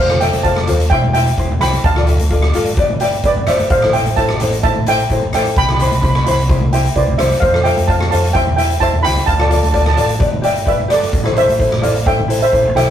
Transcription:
Already playing: F1
0.09 F4 A4 C5, cross-stick
0.20 F4 A4 C5 E5 G5, closed hi-hat, low conga
0.33 F1, closed hi-hat, high conga
0.43 F4 A4 C5 F5 A5, kick, closed hi-hat
0.56 cross-stick, high conga
0.67 D#2 F4 A4 C5, closed hi-hat, low conga
0.80 closed hi-hat
0.90 E1 E4 G4 C5 E5 G5, kick, closed hi-hat
1.04 high conga
1.13 E4 G4 C5 E5 G5, closed hi-hat
1.26 closed hi-hat
1.37 E1 E4 G4 C5, kick, closed hi-hat
1.50 E1, high conga
1.60 C2 E4 G4 C5 G5 B5, cross-stick, closed hi-hat, low conga
1.73 closed hi-hat, high conga
1.84 D2 F5 A5, kick, closed hi-hat
1.96 F4 A4 D5, cross-stick
2.06 F4 A4 E5, closed hi-hat, low conga
2.19 D2, closed hi-hat, high conga
2.30 F4 A4 D5, kick, closed hi-hat
2.42 cross-stick, high conga
2.54 G#1 F4 A4 D5, closed hi-hat, low conga
2.66 closed hi-hat
2.77 G1 G4 B4 D5, kick, closed hi-hat
2.89 high conga
3.00 G4 B4 D5 E5 G5, closed hi-hat
3.12 closed hi-hat
3.24 G1 G4 B4 D5, kick, closed hi-hat
3.36 G1, high conga
3.47 G1 G4 B4 C5 D5 E5, cross-stick, closed hi-hat, low conga
3.59 closed hi-hat, high conga
3.70 A1 C5 F5, kick, closed hi-hat
3.82 E4 A4 C5, cross-stick
3.93 E4 A4 C5 E5 G5, closed hi-hat, low conga
4.06 A1, closed hi-hat, high conga
4.16 E4 A4 C5 E5 A5, kick, closed hi-hat
4.29 cross-stick, high conga
4.40 A1 E4 A4 C5, closed hi-hat, low conga
4.52 closed hi-hat
4.63 E4 A4 C5 E5 A5, kick, closed hi-hat
4.76 high conga
4.86 E4 A4 C5 E5 G5, closed hi-hat
4.98 closed hi-hat
5.10 A1 E4 A4 C5, kick, closed hi-hat
5.22 A1, high conga
5.33 A1 E4 A4 C5 E5 G5, cross-stick, closed hi-hat
5.45 closed hi-hat, high conga
5.56 C2 G5 B5, kick, closed hi-hat
5.66 E4 B5, cross-stick
5.70 G4 C5 B5
5.79 E4 G4 C5 B5, closed hi-hat, low conga
5.88 B5, high conga
5.92 C2 B5, closed hi-hat
6.01 E4 G4 C5 B5, kick, closed hi-hat, low conga
6.09 B5
6.15 B5, cross-stick, high conga
6.25 C2 E4 G4 C5 B5, closed hi-hat, low conga
6.31 B5
6.39 closed hi-hat
6.48 E4 G4 C5, kick, closed hi-hat
6.61 high conga
6.73 E4 G4 C5 E5 G5, closed hi-hat
6.85 closed hi-hat
6.95 C2 E4 G4 B4 C5 D5, kick, closed hi-hat
7.08 C2, high conga
7.18 C2 E4 G4 C5 E5, cross-stick, closed hi-hat, low conga
7.31 closed hi-hat, high conga
7.40 F2 C5 F5, kick, closed hi-hat
7.53 F4 A4 C5, cross-stick
7.64 F4 A4 C5 E5 G5, closed hi-hat, low conga
7.77 F2, closed hi-hat, high conga
7.87 F4 A4 C5 F5 A5, kick, closed hi-hat
8.01 cross-stick, high conga
8.11 F2 F4 A4 C5 F5 A5, closed hi-hat, low conga
8.24 closed hi-hat
8.33 E2 E4 G4 C5 E5 G5, kick, closed hi-hat
8.47 high conga
8.56 E4 G4 C5 E5 G5, closed hi-hat
8.70 closed hi-hat
8.80 E2 E4 G4 C5 E5 A5, kick, closed hi-hat
8.93 E2, high conga
9.03 C#2 E4 G4 C5 G5 B5, cross-stick, closed hi-hat, low conga
9.16 closed hi-hat, high conga
9.26 D2 F5 A5, kick, closed hi-hat
9.34 F4 A5
9.40 A4 D5 A5, cross-stick
9.48 F4 A4 D5 A5, closed hi-hat, low conga
9.55 A5
9.63 D2 A5, closed hi-hat, high conga
9.72 F4 A4 D5 A5, kick, closed hi-hat
9.80 A5
9.86 A5, cross-stick, high conga
9.94 A1 F4 A4 D5 A5, closed hi-hat, low conga
10.02 A5
10.09 closed hi-hat
10.19 G1 G4 B4 D5, kick, closed hi-hat
10.33 high conga
10.42 G4 B4 D5 E5 G5, closed hi-hat
10.56 closed hi-hat
10.65 G1 G4 B4 D5 E5, kick, closed hi-hat
10.79 G1, high conga
10.88 G1 G4 B4 D5, cross-stick, closed hi-hat
10.93 A4
11.02 closed hi-hat, high conga
11.13 A1, kick, closed hi-hat
11.23 E4 A4 C5, cross-stick
11.34 E4 A4 C5 E5, closed hi-hat, low conga
11.48 A1, closed hi-hat, high conga
11.58 E4 A4 C5, kick, closed hi-hat
11.72 cross-stick, high conga
11.81 A1 E4 A4 C5 D5 F5, closed hi-hat, low conga
11.95 closed hi-hat
12.05 E4 A4 C5 E5 G5, kick, closed hi-hat
12.19 high conga
12.28 E4 A4 C5, closed hi-hat
12.42 C5 E5, closed hi-hat
12.51 A1 E4 A4 C5, kick, closed hi-hat
12.65 A1
12.75 B1 E4 A4 C5 E5 G5, cross-stick, closed hi-hat, low conga

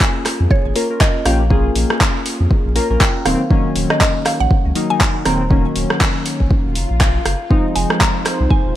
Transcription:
Already playing: A#3 C#4 F4 G#4 G#5
0.01 kick, clap
0.26 cross-stick, clap, open hi-hat
0.40 F2
0.51 C#5, kick
0.65 G#1
0.75 A#3 C#4 F4 A#4, open hi-hat
0.90 A#3 C#4 F4 A#4
1.01 D#5, kick, clap
1.25 A#1 A#3 C#4 F4 G4 F5, cross-stick, open hi-hat
1.50 A#3 C#4 F4 G#4, kick
1.75 A#1, open hi-hat
1.90 cross-stick
2.01 kick, clap
2.26 open hi-hat
2.40 F2
2.51 kick
2.65 A#1
2.75 A#3 C#4 F4 A#4, open hi-hat
2.90 A#1 A#3 C#4 F4 A#4
3.01 G5, kick, clap
3.25 D#1 D#3 F#3 A#3 C4 F5, cross-stick, open hi-hat
3.50 D#3 F#3 A#3 C#4, kick
3.76 D#1, open hi-hat
3.90 D#5, cross-stick
4.01 D#5, kick, clap
4.26 F5, cross-stick, clap, open hi-hat
4.40 A#1 F#5
4.51 kick
4.65 C#2
4.75 D#3 F#3 A#3 D#4, open hi-hat
4.90 D#3 F#3 A#3 D#4 G#5
5.01 kick, clap
5.25 D#1 D#3 F#3 A#3 C4 A#5, cross-stick, open hi-hat
5.50 D#3 F#3 A#3 C#4, kick
5.76 D#1, open hi-hat
5.90 cross-stick
6.01 kick, clap
6.26 open hi-hat
6.40 A#1, kick
6.51 kick, swell
6.65 D#1
6.76 F#1, open hi-hat
6.90 A#1
7.01 kick, clap
7.26 F#1 F5, cross-stick, open hi-hat
7.50 F3 G#3 C4 D#4 F4 C5, kick
7.75 F1 G#5, open hi-hat
7.90 cross-stick
8.00 A#5, kick, clap
8.26 cross-stick, clap, open hi-hat
8.40 C2
8.50 G#5, kick
8.65 D#1

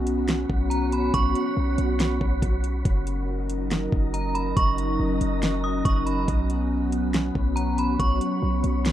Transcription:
Already playing: B1 B3 C#4 F#4 C#5 B5
0.07 closed hi-hat
0.28 snare, closed hi-hat
0.50 B1, kick
0.70 A#5, closed hi-hat
0.92 B5, closed hi-hat
1.14 B1 C#6, kick, closed hi-hat
1.35 closed hi-hat
1.57 B1
1.78 B1, closed hi-hat
2.00 snare, closed hi-hat
2.21 B1, kick
2.42 B1, kick, closed hi-hat
2.64 closed hi-hat
2.85 F#1 F#3 C#4 D#4 A#4 D#5 A#5, kick, closed hi-hat
3.07 closed hi-hat
3.50 closed hi-hat
3.71 snare, closed hi-hat
3.92 F#1, kick
4.14 A#5, closed hi-hat
4.35 B5, closed hi-hat
4.57 F#1 C#6, kick, closed hi-hat
4.78 closed hi-hat
5.00 F#1
5.21 F#1, closed hi-hat
5.43 snare, closed hi-hat
5.64 D#6
5.85 F#1 C#6, kick, closed hi-hat
6.06 B5, closed hi-hat
6.28 B1 F#3 B3 F#4 C#5 B5, kick, closed hi-hat
6.50 closed hi-hat
6.92 closed hi-hat
7.14 snare, closed hi-hat
7.35 B1, kick
7.56 A#5, closed hi-hat
7.78 B5, closed hi-hat
8.00 B1 C#6, kick, closed hi-hat
8.21 closed hi-hat
8.42 B1
8.64 B1, closed hi-hat
8.85 snare, closed hi-hat

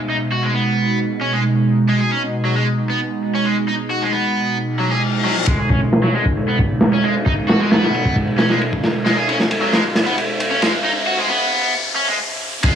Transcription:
Already playing: B2 G#3 D#4
0.10 D#4
0.32 F#4
0.43 G#3
0.54 B3
1.21 C#4
1.33 G#3
1.89 G#3
2.00 G#4
2.11 C#4
2.45 F#3
2.56 G#3
2.90 B3
3.35 C#4
3.45 G#3
3.68 D#4
3.90 F#4
4.02 G#3
4.13 B3
4.58 reverse cymbal
4.80 F#3
4.91 G#4
5.25 F#3
5.47 B2 G#3 D#4, kick, ride, riser
5.59 G#4
5.69 G#1 C#4, kick, ride
5.82 ride
5.92 snare, ride
6.03 G#1 F#3, snare
6.14 G#3, ride
6.26 kick
6.36 G#2, ride
6.48 B3, ride
6.59 kick, ride
6.71 G#1
6.81 snare, ride
6.93 C#4
7.04 G#3, ride
7.16 ride
7.26 D#4, kick, ride
7.48 G#1 F#4, snare, ride
7.60 G#3
7.71 B3, snare, ride
7.83 G#1, snare
7.94 ride
8.05 kick
8.16 G#2, kick, ride
8.27 ride
8.38 C#4, snare, ride
8.50 G#1 G#3, snare
8.61 ride
8.73 F#1, kick
8.83 snare, ride
9.05 G#3, snare, ride
9.17 G#4
9.28 G#1 C#4, ride
9.40 snare, ride
9.51 ride
9.62 G#1 F#3
9.72 G#3, snare, ride
9.95 G#2, snare, ride
10.06 B3, ride
10.18 ride
10.29 G#1
10.40 ride
10.51 F#1 C#4
10.62 G#3, snare, ride
10.84 D#4
11.07 F#4
11.19 G#3
11.29 B3
11.96 C#4
12.08 G#3
12.63 B2 G#3 D#4, kick, ride, downlifter

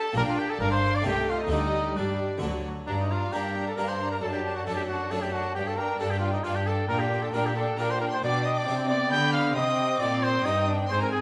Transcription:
Already playing: D4 F#4 A4 A5
0.12 A#1 A#2 A#3 D4 G4 G5 A#5
0.16 A#2 A#4
0.26 F4 F5
0.38 G4 G5
0.49 A4 A5
0.60 G1 G2 D4 A#4 F5 A#5
0.71 C5 C6
0.94 D5 D6
1.02 C2 C3 A3 D#4 A4 G5
1.06 C3 G4 D#5
1.27 F4 F5
1.38 D#4 D#5
1.47 D2 D3 A3 G4 A4 D#5
1.51 D3 G3 D#4 D5
1.95 G2 G3 D4 D5
2.38 D3 A3 F#4 A4
2.42 D2 D3 F#3
2.86 G2 D4 D5 A#5
2.98 D#4 D#5
3.09 D4 F4 F5 A#5
3.31 G2 A#3 D4 G4 G5 A#5
3.54 D4 A#5
3.67 A4 A5
3.76 G2 A#3 D4 G4 A#4 A#5
3.88 C5 C6
3.99 D4 A#5
4.11 A#4 A#5
4.21 F#2 D4 A4 A5
4.33 G4 G5
4.45 D4 A5
4.55 F#4 F#5
4.65 F#2 A3 D4 A4 A5
4.75 G4 G5
4.87 D4 F#4 F#5 A5
5.10 F#2 A3 D4 A4 A5
5.21 G4 G5
5.33 D4 F#4 F#5 A5
5.55 G2 D4 G4 G5
5.66 A4 A5
5.77 D4 A#4 G5 A#5
5.99 G2 D4 G4 A4 G5 A5
6.10 G4 G5
6.19 D4 F4 F5 G5
6.32 D#4 D#5
6.43 G2 D4 F4 G4 F5 G5
6.55 G4 G5
6.66 D4 A4 G5 A5
6.88 A#2 D4 A#4 G5 A#5
6.99 G4 G5
7.10 D4 G5
7.22 A4 A5
7.33 A#2 D4 G4 A#4 G5 A#5
7.44 G4 G5
7.54 D4 A4 G5 A5
7.76 A#2 D4 G4 A#4 G5 A#5
7.87 C5 C6
7.98 D4 A#4 G5 A#5
8.08 C6
8.13 C5
8.20 B2 D4 G5 D6
8.24 D5
8.43 D#5 D#6
8.54 D6
8.58 D5
8.66 C3 C4 D4 G4
8.88 B3 D5 D6
9.09 D3 B3 G5 B5 G6
9.13 D4 G4
9.32 F5 F6
9.53 C3 C4 D#5 G5 D#6
9.97 A#2 C4 D5 G5 D6
10.01 D#4
10.19 C6
10.23 C5
10.41 G2 D#4 D#6
10.45 G2 C4 D#4 D#5
10.67 D4
10.87 G#2 C4 C5 G#5 C6
10.99 A#4 A#5
11.10 G#4 G#5

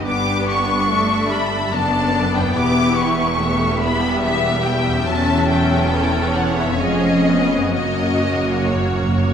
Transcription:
Already playing: G2 B3
0.00 D4 G4
0.05 G1 G2 B3 D4 G4 D6
0.09 B4
0.49 C#6
0.88 A3 E5
0.93 A4
1.28 G3 B5
1.71 F#1 F#2 B3 D4 D5 A5
2.37 E2 G5
2.43 B3
2.47 E4
2.51 E1 G4
2.56 E2 E4 G4 B4 D6
2.98 C#6
3.39 A3 B3 G4 E5
3.80 G3 B5
4.22 E5
4.65 G5
4.89 E2
4.93 C#4
4.98 E4
5.02 G4
5.07 E1 E2 F#3 C#4 A4 A5
5.49 G5
5.92 E3 C#5
6.36 F#5
6.60 F2 E5
6.68 B3 C#4
6.77 F1 F2 G#3 C#4 G#4
6.81 G#4 D#5
7.27 B3
7.57 F#2
7.61 A#3
7.66 C#4
7.70 F#1 F#2 A#3 F#4 C#5
7.74 F#2 F#4 C#5 D#5
7.82 F#2
7.90 F#2
8.05 F#2
8.13 F#2
8.21 F#2
8.28 F#2
8.36 F#2
8.44 F#2
8.51 F#2
8.59 F#2
8.68 F#2 C#5
8.76 F#2
8.85 F#2
8.93 F#2
9.01 F#2
9.09 F#2
9.18 F#2
9.26 F#2

